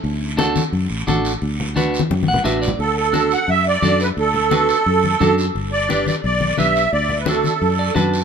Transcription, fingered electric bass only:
X:1
M:4/4
L:1/8
Q:1/4=174
K:D
V:1 name="Fingered electric bass" clef=bass
D,,4 F,, A,,, A,,,2 | D,,4 F,, A,,, A,,,2 | D,,4 F,,2 F,,2 | D,,4 F,,2 F,,2 |
G,,,4 B,,,2 B,,,2 | D,,4 F,,2 F,,2 |]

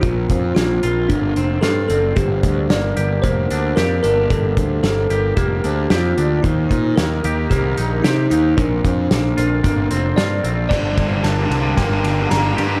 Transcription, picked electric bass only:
X:1
M:4/4
L:1/8
Q:1/4=112
K:Gm
V:1 name="Picked electric bass" clef=bass
B,,, F,, B,,, B,,, G,,, F,,, G,, ^F,,, | G,,, D,, G,,, G,,, F,,, D,, F,, G,,, | G,,, D,, G,,, G,,, F,,, D,, F,, D,, | E,, B,, E,, E,, C,, B,,, C, E,, |
B,,, F,, B,,, B,,, G,,, F,,, G,, B,,, | G,,, G,,, G,,, C,, G,,, G,,, G,,, G,, |]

